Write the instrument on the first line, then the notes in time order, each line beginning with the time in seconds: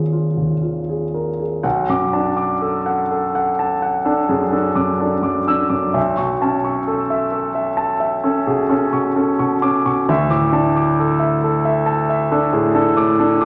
grand piano
Already playing: G#1 D#2 D#4 F4 G#4
0.13 F4
0.37 D#2
0.62 F4
0.89 G#4
1.14 A#4
1.39 G#4
1.63 B1 F#5
1.89 F#2 D6
2.13 D4 A5
2.37 D6
2.61 A4
2.86 F#5
3.11 A4
3.35 F#5
3.59 A5
3.82 F#5
4.05 D4 A4
4.29 F#2 G#4
4.53 D4 A4
4.75 F#2 D6
5.00 D4 A4
5.23 F#2 D6
5.47 D4 E6
5.70 F#2 D6
5.94 B1 E5
6.17 B2 C#6
6.42 C#4 A5
6.64 C#6
6.87 A4
7.10 E5
7.32 A4
7.55 E5
7.77 A5
8.00 E5
8.24 C#4 A4
8.47 B2 G#4
8.69 C#4 A4
8.93 B2 C#6
9.16 C#4 A4
9.39 B2 C#6
9.62 C#4 D6
9.86 B2 C#6
10.09 D2 E5
10.31 A2 D6
10.52 D4 A5
10.76 D6
10.99 A4
11.19 E5
11.44 A4
11.65 E5
11.86 A5
12.10 E5
12.31 D4 A4
12.53 A2 G#4
12.75 D4 A4
12.97 A2 D6
13.19 D4 A4
13.41 A2 D6